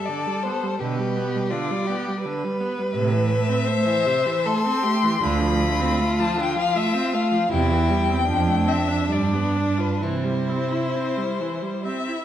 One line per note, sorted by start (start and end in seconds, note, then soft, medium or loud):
0.00 0.10 G3 soft
0.00 0.80 A4 medium
0.05 0.28 D3 soft
0.05 0.44 D5 medium
0.27 0.46 G3 soft
0.43 0.65 B3 soft
0.43 0.80 C5 medium
0.63 0.81 G3 soft
0.79 1.39 B2 medium
0.79 1.01 D3 soft
0.79 1.52 G4 medium
0.79 1.52 B4 medium
0.99 1.18 G3 soft
1.17 1.37 B3 soft
1.35 1.54 G3 soft
1.51 1.73 D3 medium
1.51 1.87 F4 medium
1.51 2.23 D5 medium
1.71 1.91 G3 soft
1.86 2.21 G4 medium
1.90 2.09 B3 medium
2.08 2.27 G3 soft
2.22 2.46 D3 medium
2.22 3.66 B4 medium
2.44 2.62 G3 soft
2.60 2.80 B3 medium
2.79 2.96 G3 soft
2.95 3.54 A2 medium
2.95 3.15 C3 medium
2.95 4.48 E5 medium
3.13 3.33 E3 medium
3.31 3.51 A3 medium
3.49 3.69 C4 medium
3.65 3.87 A3 medium
3.65 4.47 C5 medium
3.85 4.07 E3 medium
4.06 4.27 C3 medium
4.26 4.48 E3 medium
4.46 4.67 A3 medium
4.46 4.84 A4 medium
4.46 5.25 C6 loud
4.65 4.85 C4 medium
4.83 5.05 A3 medium
4.83 5.22 G4 medium
5.04 5.21 E3 medium
5.22 5.87 D2 medium
5.22 5.43 D3 medium
5.22 7.47 F4 medium
5.22 6.21 B5 medium
5.42 5.63 F3 medium
5.61 5.82 A3 medium
5.80 6.02 C4 medium
6.00 6.21 A3 medium
6.19 6.39 F3 medium
6.19 6.41 A5 medium
6.37 6.58 D3 medium
6.37 6.58 G5 loud
6.56 6.77 F3 medium
6.56 6.79 F5 medium
6.75 6.96 A3 medium
6.75 7.16 E5 loud
6.94 7.15 C4 medium
7.13 7.34 A3 medium
7.13 7.52 F5 medium
7.32 7.51 F3 medium
7.51 8.15 E2 medium
7.51 7.74 C3 medium
7.51 8.26 E4 medium
7.51 8.70 G5 medium
7.72 7.92 E3 medium
7.90 8.11 G3 medium
8.09 8.28 C4 medium
8.27 8.97 F2 medium
8.27 8.49 F3 medium
8.27 10.04 D4 medium
8.47 8.69 A3 medium
8.67 8.90 C4 medium
8.67 9.13 E5 medium
8.89 9.09 D4 soft
9.10 9.86 G2 medium
9.10 9.35 G3 medium
9.10 9.82 D5 medium
9.33 9.57 B3 medium
9.56 9.80 D4 medium
9.78 10.01 F4 soft
9.78 10.05 B4 medium
10.01 10.79 C3 medium
10.01 10.26 E3 medium
10.01 12.25 E4 medium
10.01 11.85 C5 medium
10.25 10.51 G3 soft
10.49 10.73 C4 soft
10.71 10.97 E4 soft
10.95 11.19 C4 soft
11.17 11.42 G3 soft
11.41 11.64 E3 soft
11.63 11.87 G3 soft
11.85 12.10 C4 soft
11.85 12.25 E5 medium
12.09 12.25 E4 soft